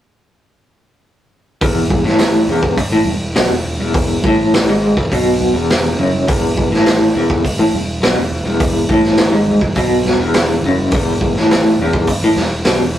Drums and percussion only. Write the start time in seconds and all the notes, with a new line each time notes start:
1.61 kick, open hi-hat
1.90 kick, high conga
2.06 snare
2.19 snare, open hi-hat
2.48 low conga
2.63 kick
2.78 kick, open hi-hat
3.05 high conga, low conga
3.36 snare, open hi-hat
3.64 low conga
3.79 high conga
3.94 kick, open hi-hat
4.22 kick, high conga
4.54 snare, open hi-hat
4.97 kick
5.12 kick, open hi-hat
5.40 high conga, low conga
5.70 snare, open hi-hat
5.99 low conga
6.13 high conga
6.28 kick, open hi-hat
6.56 kick, high conga
6.73 snare
6.86 snare, open hi-hat
7.16 low conga
7.30 kick
7.45 kick, open hi-hat
7.74 high conga
8.03 snare, open hi-hat
8.31 low conga
8.46 high conga
8.60 kick, open hi-hat
8.89 kick, high conga
9.04 snare
9.17 snare, open hi-hat
9.48 high conga, low conga
9.61 kick
9.75 kick, open hi-hat, low conga
10.05 snare, high conga, low conga
10.34 snare, open hi-hat
10.63 low conga
10.78 high conga
10.91 kick, open hi-hat
11.21 kick, high conga
11.36 snare
11.51 snare, open hi-hat
11.78 low conga
11.93 kick
12.07 kick, open hi-hat
12.36 snare, high conga, low conga
12.65 snare, open hi-hat
12.95 low conga